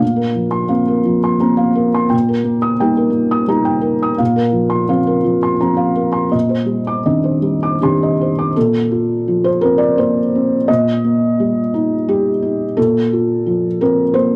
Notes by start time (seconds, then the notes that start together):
0.00 A#2 F5
0.16 A#4
0.35 F3
0.51 C6
0.69 A#3 C4 F5
0.88 A#4
1.05 F3
1.24 C6
1.40 A#3 C4 A#5
1.57 F5
1.75 A#4
1.94 C6
2.10 A#2 G5
2.29 A#4
2.44 A#3
2.62 D#6
2.80 G3 A#3 D#4 G5
2.97 A#4
3.10 A#3
3.31 D#6
3.48 G3 A#3 D#4 A#5
3.65 G5
3.81 A#4
4.03 D#6
4.18 A#2 F5
4.36 A#4
4.53 F3
4.70 C6
4.89 F3 C4 F5
5.07 A#4
5.24 F3
5.43 C6
5.60 F3 C4 A#5
5.77 F5
5.96 A#4
6.12 C6
6.32 A#2 D#5
6.49 C5
6.66 G3
6.87 D6
7.05 D#3 C4 D4 D#5
7.24 C5
7.42 G3
7.63 D6
7.82 D#3 C4 D4 G4 C6
8.03 D#5
8.21 C5
8.39 D6
8.56 A#2 A4
8.91 F4
9.28 F3
9.44 C5
9.61 C4 A#4
9.78 D5
9.98 A#3 C5
10.35 C4
10.68 A#2 D#5
11.04 A#3
11.40 G3
11.74 D#4
12.09 G3 G4
12.43 D#4
12.77 A#2 A4
13.13 F4
13.46 F3
13.81 C4 A#4
14.14 A#3 C5